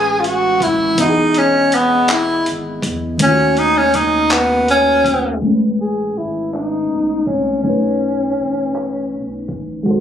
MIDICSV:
0, 0, Header, 1, 5, 480
1, 0, Start_track
1, 0, Tempo, 740741
1, 634, Time_signature, 6, 3, 24, 8
1, 6482, End_track
2, 0, Start_track
2, 0, Title_t, "Tenor saxophone"
2, 0, Program_c, 0, 66
2, 0, Note_on_c, 0, 68, 95
2, 128, Note_on_c, 0, 65, 65
2, 137, Note_off_c, 0, 68, 0
2, 173, Note_on_c, 0, 66, 94
2, 183, Note_off_c, 0, 65, 0
2, 408, Note_on_c, 0, 64, 94
2, 418, Note_off_c, 0, 66, 0
2, 655, Note_on_c, 0, 63, 93
2, 664, Note_off_c, 0, 64, 0
2, 895, Note_on_c, 0, 61, 94
2, 904, Note_off_c, 0, 63, 0
2, 1133, Note_on_c, 0, 59, 82
2, 1143, Note_off_c, 0, 61, 0
2, 1369, Note_on_c, 0, 64, 85
2, 1378, Note_off_c, 0, 59, 0
2, 1601, Note_off_c, 0, 64, 0
2, 2090, Note_on_c, 0, 61, 102
2, 2323, Note_on_c, 0, 63, 101
2, 2333, Note_off_c, 0, 61, 0
2, 2444, Note_on_c, 0, 61, 100
2, 2454, Note_off_c, 0, 63, 0
2, 2559, Note_on_c, 0, 63, 93
2, 2569, Note_off_c, 0, 61, 0
2, 2801, Note_on_c, 0, 59, 92
2, 2811, Note_off_c, 0, 63, 0
2, 3038, Note_off_c, 0, 59, 0
2, 3050, Note_on_c, 0, 61, 100
2, 3496, Note_off_c, 0, 61, 0
2, 3766, Note_on_c, 0, 68, 94
2, 4003, Note_on_c, 0, 64, 79
2, 4012, Note_off_c, 0, 68, 0
2, 4232, Note_off_c, 0, 64, 0
2, 4236, Note_on_c, 0, 63, 82
2, 4711, Note_on_c, 0, 61, 81
2, 4720, Note_off_c, 0, 63, 0
2, 4943, Note_off_c, 0, 61, 0
2, 4947, Note_on_c, 0, 61, 84
2, 6124, Note_off_c, 0, 61, 0
2, 6482, End_track
3, 0, Start_track
3, 0, Title_t, "FM electric piano"
3, 0, Program_c, 1, 5
3, 0, Control_c, 1, 64, 127
3, 0, Note_on_c, 1, 45, 67
3, 0, Note_on_c, 1, 56, 59
3, 0, Note_on_c, 1, 61, 57
3, 0, Note_on_c, 1, 71, 64
3, 599, Note_off_c, 1, 45, 0
3, 607, Note_off_c, 1, 56, 0
3, 613, Note_on_c, 1, 52, 66
3, 615, Note_off_c, 1, 61, 0
3, 624, Note_off_c, 1, 71, 0
3, 632, Note_on_c, 1, 59, 55
3, 643, Control_c, 1, 64, 0
3, 647, Note_on_c, 1, 75, 64
3, 664, Note_on_c, 1, 66, 62
3, 691, Note_off_c, 1, 66, 0
3, 708, Note_on_c, 1, 68, 74
3, 742, Control_c, 1, 64, 127
3, 2038, Note_off_c, 1, 52, 0
3, 2047, Note_off_c, 1, 59, 0
3, 2054, Note_off_c, 1, 75, 0
3, 2057, Note_on_c, 1, 51, 72
3, 2074, Note_on_c, 1, 57, 61
3, 2083, Control_c, 1, 64, 0
3, 2085, Note_off_c, 1, 68, 0
3, 2091, Note_on_c, 1, 61, 63
3, 2109, Note_on_c, 1, 65, 64
3, 2134, Note_off_c, 1, 65, 0
3, 2150, Note_on_c, 1, 66, 76
3, 2186, Control_c, 1, 64, 127
3, 3480, Note_off_c, 1, 51, 0
3, 3488, Note_off_c, 1, 57, 0
3, 3496, Note_off_c, 1, 61, 0
3, 3501, Note_on_c, 1, 57, 57
3, 3519, Note_on_c, 1, 56, 54
3, 3522, Control_c, 1, 64, 0
3, 3526, Note_off_c, 1, 66, 0
3, 3537, Note_on_c, 1, 61, 50
3, 3552, Note_on_c, 1, 69, 50
3, 3575, Note_off_c, 1, 69, 0
3, 3595, Note_on_c, 1, 71, 60
3, 3630, Control_c, 1, 64, 127
3, 4922, Note_off_c, 1, 57, 0
3, 4930, Note_off_c, 1, 56, 0
3, 4937, Note_on_c, 1, 47, 56
3, 4939, Note_off_c, 1, 61, 0
3, 4952, Note_on_c, 1, 57, 50
3, 4964, Control_c, 1, 64, 0
3, 4967, Note_on_c, 1, 63, 54
3, 4969, Note_off_c, 1, 71, 0
3, 4985, Note_on_c, 1, 71, 69
3, 5089, Control_c, 1, 64, 127
3, 6359, Note_off_c, 1, 47, 0
3, 6367, Note_off_c, 1, 57, 0
3, 6370, Note_on_c, 1, 56, 76
3, 6375, Note_off_c, 1, 63, 0
3, 6384, Note_off_c, 1, 71, 0
3, 6388, Note_on_c, 1, 66, 62
3, 6402, Control_c, 1, 64, 0
3, 6404, Note_on_c, 1, 69, 65
3, 6419, Note_on_c, 1, 72, 84
3, 6482, Note_off_c, 1, 56, 0
3, 6482, Note_off_c, 1, 66, 0
3, 6482, Note_off_c, 1, 69, 0
3, 6482, Note_off_c, 1, 72, 0
3, 6482, End_track
4, 0, Start_track
4, 0, Title_t, "Analog synth bass"
4, 0, Program_c, 2, 38
4, 0, Note_on_c, 2, 33, 102
4, 611, Note_off_c, 2, 33, 0
4, 642, Note_on_c, 2, 28, 116
4, 1572, Note_off_c, 2, 28, 0
4, 1608, Note_on_c, 2, 32, 90
4, 1818, Note_off_c, 2, 32, 0
4, 1839, Note_on_c, 2, 40, 88
4, 2053, Note_off_c, 2, 40, 0
4, 2080, Note_on_c, 2, 39, 127
4, 3491, Note_off_c, 2, 39, 0
4, 3520, Note_on_c, 2, 33, 118
4, 3971, Note_off_c, 2, 33, 0
4, 4008, Note_on_c, 2, 32, 80
4, 4455, Note_off_c, 2, 32, 0
4, 4490, Note_on_c, 2, 35, 79
4, 4699, Note_off_c, 2, 35, 0
4, 4717, Note_on_c, 2, 36, 75
4, 4932, Note_off_c, 2, 36, 0
4, 4958, Note_on_c, 2, 35, 108
4, 5410, Note_off_c, 2, 35, 0
4, 5449, Note_on_c, 2, 33, 89
4, 5929, Note_on_c, 2, 35, 90
4, 5939, Note_off_c, 2, 33, 0
4, 6155, Note_on_c, 2, 33, 87
4, 6164, Note_off_c, 2, 35, 0
4, 6370, Note_off_c, 2, 33, 0
4, 6397, Note_on_c, 2, 32, 123
4, 6482, Note_off_c, 2, 32, 0
4, 6482, End_track
5, 0, Start_track
5, 0, Title_t, "Drums"
5, 157, Note_on_c, 9, 42, 38
5, 222, Note_off_c, 9, 42, 0
5, 392, Note_on_c, 9, 36, 87
5, 401, Note_on_c, 9, 42, 48
5, 456, Note_off_c, 9, 36, 0
5, 466, Note_off_c, 9, 42, 0
5, 634, Note_on_c, 9, 42, 77
5, 635, Note_on_c, 9, 36, 102
5, 699, Note_off_c, 9, 42, 0
5, 700, Note_off_c, 9, 36, 0
5, 871, Note_on_c, 9, 42, 39
5, 936, Note_off_c, 9, 42, 0
5, 1115, Note_on_c, 9, 42, 52
5, 1180, Note_off_c, 9, 42, 0
5, 1349, Note_on_c, 9, 42, 58
5, 1357, Note_on_c, 9, 39, 99
5, 1414, Note_off_c, 9, 42, 0
5, 1421, Note_off_c, 9, 39, 0
5, 1596, Note_on_c, 9, 42, 38
5, 1660, Note_off_c, 9, 42, 0
5, 1830, Note_on_c, 9, 36, 86
5, 1836, Note_on_c, 9, 42, 51
5, 1895, Note_off_c, 9, 36, 0
5, 1901, Note_off_c, 9, 42, 0
5, 2069, Note_on_c, 9, 42, 78
5, 2073, Note_on_c, 9, 36, 122
5, 2134, Note_off_c, 9, 42, 0
5, 2138, Note_off_c, 9, 36, 0
5, 2311, Note_on_c, 9, 42, 39
5, 2376, Note_off_c, 9, 42, 0
5, 2552, Note_on_c, 9, 42, 57
5, 2558, Note_on_c, 9, 36, 93
5, 2617, Note_off_c, 9, 42, 0
5, 2623, Note_off_c, 9, 36, 0
5, 2786, Note_on_c, 9, 42, 53
5, 2794, Note_on_c, 9, 39, 107
5, 2851, Note_off_c, 9, 42, 0
5, 2858, Note_off_c, 9, 39, 0
5, 3035, Note_on_c, 9, 42, 37
5, 3100, Note_off_c, 9, 42, 0
5, 3270, Note_on_c, 9, 36, 84
5, 3277, Note_on_c, 9, 42, 50
5, 3334, Note_off_c, 9, 36, 0
5, 3342, Note_off_c, 9, 42, 0
5, 3511, Note_on_c, 9, 42, 76
5, 3512, Note_on_c, 9, 36, 95
5, 3575, Note_off_c, 9, 42, 0
5, 3577, Note_off_c, 9, 36, 0
5, 3752, Note_on_c, 9, 42, 34
5, 3817, Note_off_c, 9, 42, 0
5, 3996, Note_on_c, 9, 42, 53
5, 4061, Note_off_c, 9, 42, 0
5, 4231, Note_on_c, 9, 42, 48
5, 4238, Note_on_c, 9, 39, 87
5, 4296, Note_off_c, 9, 42, 0
5, 4303, Note_off_c, 9, 39, 0
5, 4474, Note_on_c, 9, 42, 34
5, 4539, Note_off_c, 9, 42, 0
5, 4709, Note_on_c, 9, 36, 76
5, 4715, Note_on_c, 9, 42, 47
5, 4774, Note_off_c, 9, 36, 0
5, 4780, Note_off_c, 9, 42, 0
5, 4946, Note_on_c, 9, 42, 75
5, 4950, Note_on_c, 9, 36, 113
5, 5011, Note_off_c, 9, 42, 0
5, 5015, Note_off_c, 9, 36, 0
5, 5188, Note_on_c, 9, 42, 35
5, 5253, Note_off_c, 9, 42, 0
5, 5430, Note_on_c, 9, 42, 50
5, 5495, Note_off_c, 9, 42, 0
5, 5667, Note_on_c, 9, 42, 47
5, 5674, Note_on_c, 9, 39, 86
5, 5732, Note_off_c, 9, 42, 0
5, 5739, Note_off_c, 9, 39, 0
5, 5913, Note_on_c, 9, 42, 36
5, 5978, Note_off_c, 9, 42, 0
5, 6146, Note_on_c, 9, 36, 80
5, 6152, Note_on_c, 9, 42, 46
5, 6211, Note_off_c, 9, 36, 0
5, 6217, Note_off_c, 9, 42, 0
5, 6385, Note_on_c, 9, 42, 69
5, 6390, Note_on_c, 9, 36, 100
5, 6450, Note_off_c, 9, 42, 0
5, 6454, Note_off_c, 9, 36, 0
5, 6482, End_track
0, 0, End_of_file